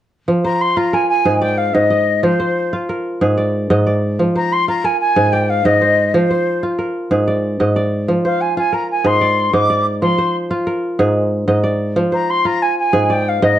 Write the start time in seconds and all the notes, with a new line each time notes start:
0.28 F3
0.44 C5 A#5
0.61 C6
0.77 F4 A#5
0.93 A#4 G#5
1.09 G#5
1.25 G#2 G#4
1.42 D5 G5
1.58 F5
1.74 G#2 D#5
1.90 D#5
2.23 F3 C5
2.40 C5
2.73 F4
2.89 A#4
3.21 G#2 G#4
3.38 D5
3.70 G#2 D#5
3.87 D5
4.19 F3
4.36 C5 A#5
4.53 C6
4.68 F4 A#5
4.84 A#4 G#5
5.00 G#5
5.16 G#2
5.33 D5 G5
5.50 F5
5.65 G#2 D#5
5.81 C5
6.14 F3 C5
6.31 C5
6.63 F4
6.79 A#4
7.11 G#2 G#4
7.28 D5
7.60 G#2 D#5
7.76 D5
8.08 F3
8.25 C5 F5
8.41 G#5
8.57 F4 G#5
8.72 A#4 A#5
8.91 G#5
9.04 G#2 G#4 C6
9.21 D5
9.53 G#2 D#5 D6
9.70 D5
10.02 F3 C6
10.18 C5
10.51 F4
10.67 A#4
10.99 G#2 G#4
11.48 G#2 D#5
11.64 D5
11.96 F3
12.12 C5 A#5
12.30 C6
12.45 F4 A#5
12.62 G#5
12.79 G#5
12.93 G#2 G#4
13.10 D5 G5
13.29 F5
13.42 G#2 D#5